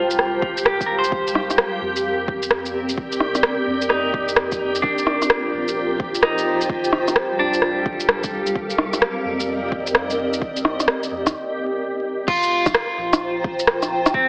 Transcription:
Already playing: sub bass C2, ambient pad G3 G4 A#4 A5, clean electric guitar F4, synth texture G4
0.11 ambient pad F5, shaker
0.19 cross-stick
0.42 kick
0.57 shaker
0.65 clean electric guitar G4, cross-stick
0.81 kick, shaker
0.86 clean electric guitar A#4
0.98 clean electric guitar C5
1.04 shaker
1.12 sub bass C2, ambient pad C4, kick
1.27 shaker
1.35 cross-stick
1.50 cross-stick, shaker
1.58 cross-stick
1.81 sub bass F2
1.96 shaker
2.00 ambient pad D5
2.28 kick
2.43 shaker
2.51 cross-stick
2.66 shaker
2.89 shaker
2.97 sub bass C2, kick
3.12 shaker
3.20 cross-stick
3.35 cross-stick, shaker
3.43 cross-stick
3.66 sub bass F2
3.82 shaker
3.89 clean electric guitar D#4, cross-stick
4.14 kick
4.28 shaker
4.36 cross-stick
4.52 kick, shaker
4.75 shaker
4.82 sub bass F1, clean electric guitar D4, ambient pad F4, kick
4.98 shaker
5.07 cross-stick
5.12 ambient pad C5
5.22 cross-stick, shaker
5.30 cross-stick
5.53 sub bass A#1
5.65 ambient pad G5 A#5, shaker
6.00 kick
6.15 shaker
6.22 clean electric guitar D#4, cross-stick
6.38 shaker
6.61 shaker
6.69 sub bass G1, ambient pad G3, kick
6.84 ambient pad G4, shaker
6.93 cross-stick
7.08 cross-stick, shaker
7.16 cross-stick
7.26 ambient pad A4
7.37 sub bass C2, clean electric guitar D4, ambient pad A#4
7.54 ambient pad F5, shaker
7.62 cross-stick
7.86 kick
8.00 shaker
8.09 cross-stick
8.23 kick, shaker
8.47 shaker
8.55 sub bass C2, ambient pad C4, kick
8.70 shaker
8.78 ambient pad D#5, cross-stick
8.93 cross-stick, shaker
8.98 ambient pad D5
9.02 cross-stick
9.25 sub bass F2
9.40 shaker
9.72 kick
9.87 shaker
9.95 cross-stick
10.10 shaker
10.33 shaker
10.41 sub bass C2, kick
10.57 shaker
10.65 cross-stick
10.80 cross-stick, shaker
10.88 cross-stick
11.03 shaker
11.11 sub bass F2
11.26 kick, cross-stick, shaker
12.27 sub bass F1, ambient pad F4, clean electric guitar F4, kick, crash
12.43 shaker
12.50 ambient pad C5
12.66 ambient pad G5, kick, cross-stick, shaker
12.71 ambient pad A#5, cross-stick
12.97 sub bass A#1
13.13 cross-stick, shaker
13.44 kick
13.59 shaker
13.67 cross-stick
13.82 cross-stick, shaker
14.06 cross-stick, shaker
14.13 sub bass G1, ambient pad G3, clean electric guitar C4, kick
14.25 ambient pad G4

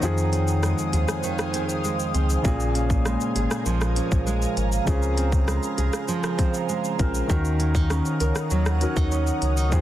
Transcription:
Already playing: nylon-string guitar D#4
0.00 nylon-string guitar F2, sub bass F2, grand piano D#3 C4 F4, ambient pad C5 F5 G#5 D#6, shaker
0.05 grand piano G#4
0.18 shaker
0.33 nylon-string guitar C4, closed hi-hat, shaker
0.48 shaker
0.63 nylon-string guitar G#3, cross-stick, shaker
0.78 shaker
0.93 sub bass D#2, nylon-string guitar G#4, closed hi-hat, shaker
1.08 cross-stick, shaker
1.23 nylon-string guitar D#3, shaker
1.39 cross-stick, shaker
1.54 nylon-string guitar C4, closed hi-hat, shaker
1.69 shaker
1.84 nylon-string guitar G#3, shaker
2.00 shaker
2.14 sub bass C#2, nylon-string guitar C4, closed hi-hat, shaker
2.30 shaker
2.42 sub bass A#1, nylon-string guitar A#2, grand piano C#3 A#3 F4, ambient pad A#4 F5 G#5 A#5, kick, shaker
2.47 grand piano G#4
2.60 shaker
2.75 nylon-string guitar C#4, closed hi-hat, shaker
2.90 kick, shaker
3.05 nylon-string guitar G#3, cross-stick, shaker
3.21 shaker
3.36 sub bass G#1, nylon-string guitar G#4, closed hi-hat, shaker
3.51 cross-stick, shaker
3.66 sub bass A#1, nylon-string guitar F3, shaker
3.81 cross-stick, shaker
3.96 nylon-string guitar C#4, closed hi-hat, shaker
4.12 sub bass A#1, kick, shaker
4.27 nylon-string guitar G#3, shaker
4.42 shaker
4.57 sub bass G#1, nylon-string guitar C#4, closed hi-hat, shaker
4.72 shaker
4.85 sub bass C#2, grand piano C#3 C4 F4, nylon-string guitar C#3, ambient pad C5 G#5, kick, shaker
4.90 grand piano G#4
5.02 shaker
5.17 nylon-string guitar C4, closed hi-hat, shaker
5.32 kick, shaker
5.48 nylon-string guitar G#3, cross-stick, shaker
5.63 shaker
5.78 sub bass C2, nylon-string guitar G#4, closed hi-hat, shaker
5.93 cross-stick, shaker
6.08 nylon-string guitar F3, shaker
6.23 cross-stick, shaker
6.39 nylon-string guitar C4, kick, closed hi-hat, shaker
6.54 shaker
6.69 nylon-string guitar G#3, shaker
6.84 shaker
6.98 sub bass A#1, grand piano C#3 C4 F4 A#4, nylon-string guitar C4, kick, closed hi-hat, shaker
7.15 shaker
7.27 sub bass D#2, grand piano D#3 C#4 F#4, nylon-string guitar D#3, ambient pad C#5 F#5 A#5 D#6, kick, shaker
7.32 grand piano A#4
7.45 shaker
7.60 nylon-string guitar C#4, closed hi-hat, shaker
7.75 nylon-string guitar D#4, kick, shaker
7.90 nylon-string guitar C#4, cross-stick, shaker
8.05 shaker
8.20 sub bass C#2, nylon-string guitar A#4, closed hi-hat, shaker
8.36 cross-stick, shaker
8.51 sub bass D#2, nylon-string guitar F#3, shaker
8.66 cross-stick, shaker
8.80 grand piano D#3 C#4 F#4 A#4, nylon-string guitar C#4, closed hi-hat, shaker
8.96 sub bass D#2, nylon-string guitar D#4, kick, shaker
9.12 nylon-string guitar C#4, shaker
9.27 shaker
9.42 sub bass C#2, nylon-string guitar C#4, closed hi-hat, shaker
9.57 nylon-string guitar D#4, shaker
9.70 nylon-string guitar F2, sub bass F2, grand piano D#3 C4 F4, kick, shaker
9.75 grand piano G#4

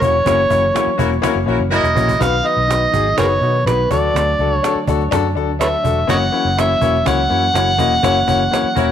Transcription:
Already playing: tonewheel organ E3 F#3 A#3 C#4
0.01 fingered electric bass E1, grand piano A#3 C#4 E4 F#4 C#5, harmonica C#5, cajon bass
0.26 fingered electric bass F#1, grand piano A#3 C#4 E4 F#4 C#5, cajon bass, cajon slap
0.49 fingered electric bass F#1, grand piano A#3 C#4 E4 F#4 C#5, cajon bass
0.74 grand piano A#3 C#4 E4 F#4 C#5, cajon slap
0.87 muted fingered electric bass stroke
0.98 fingered electric bass E1, grand piano A#3 C#4 E4 F#4 C#5, horn section E4 F#4 A#4, cajon bass
1.22 grand piano A#3 C#4 E4 F#4 C#5, horn section E4 F#4 A#4, cajon bass, cajon slap
1.35 fingered electric bass F#1
1.46 fingered electric bass A#1, grand piano A#3 C#4 E4 F#4 C#5, horn section E4 F#4 A#4, cajon slap
1.59 fingered electric bass F#1
1.70 grand piano A#3 C#4 E4 F#4 C#5, horn section E4 F#4 A#4, cajon slap
1.75 harmonica D#5
1.83 fingered electric bass E1, cajon slap
1.95 fingered electric bass A#1, grand piano A#3 C#4 E4 F#4 C#5, cajon bass
2.08 cajon bass
2.19 fingered electric bass B1, tonewheel organ D#3 B3 D#4, grand piano D#4 F#4 B4, harmonica F5, cajon bass, cajon slap
2.43 grand piano D#4 F#4 B4, harmonica D#5, cajon slap
2.57 fingered electric bass B1
2.68 grand piano D#4 F#4 B4, cajon slap
2.92 fingered electric bass G#1, grand piano D#4 F#4 G#4, cajon bass
3.07 cajon slap
3.17 fingered electric bass F#1, grand piano D#4 F#4 B4, harmonica G#4 A#4 C#5, cajon bass, cajon slap
3.41 fingered electric bass B2, grand piano D#4 F#4 B4, cajon slap
3.65 fingered electric bass B1, grand piano D#4 F#4 B4, harmonica B4, cajon slap
3.90 fingered electric bass D2, tonewheel organ D3 A3 D4, grand piano D4 F#4 A4, harmonica D5, cajon bass
4.14 fingered electric bass D2, cajon slap
4.39 fingered electric bass C#2, grand piano D4 F#4 A4, cajon slap
4.53 harmonica C#5
4.63 grand piano D4 F#4 A4, cajon slap
4.75 muted fingered electric bass stroke
4.87 fingered electric bass D2, grand piano D4 F#4 A4, cajon bass
5.11 fingered electric bass F#2, grand piano D4 F#4 A4, cajon bass, cajon slap
5.35 fingered electric bass D2, grand piano D4 F#4 A4, cajon slap
5.59 grand piano D4 F#4 A4, harmonica B4 C#5 E5, cajon slap
5.83 fingered electric bass E1, grand piano D4 F#4 A4, cajon bass
6.07 fingered electric bass F#1, tonewheel organ E3 A#3 C#4, grand piano A#3 C#4 E4 F#4 C#5, harmonica C#5 D#5 F#5, cajon bass, cajon slap
6.32 grand piano A#3 C#4 E4 F#4 C#5, cajon slap
6.45 fingered electric bass F#1
6.57 grand piano A#3 C#4 E4 F#4 C#5, harmonica E5, cajon slap
6.81 fingered electric bass E1, grand piano A#3 C#4 E4 F#4 C#5, cajon bass
6.95 cajon slap
7.05 fingered electric bass C#2, grand piano A#3 C#4 E4 F#4 C#5, harmonica F#5, cajon bass, cajon slap
7.29 fingered electric bass F#2, grand piano A#3 C#4 E4 F#4 C#5, cajon slap
7.54 fingered electric bass F#1, grand piano A#3 C#4 E4 F#4 C#5, cajon slap
7.78 fingered electric bass E1, grand piano A#3 C#4 E4 F#4 D#5, cajon bass
8.03 fingered electric bass F#1, grand piano A#3 C#4 E4 F#4 C#5, cajon bass, cajon slap
8.27 fingered electric bass F#1, grand piano A#3 C#4 E4 F#4 C#5, cajon bass
8.51 grand piano A#3 C#4 E4 F#4 C#5, cajon slap
8.63 muted fingered electric bass stroke
8.75 fingered electric bass E1, grand piano A#3 C#4 E4 F#4 C#5, horn section E4 F#4 A#4, cajon bass

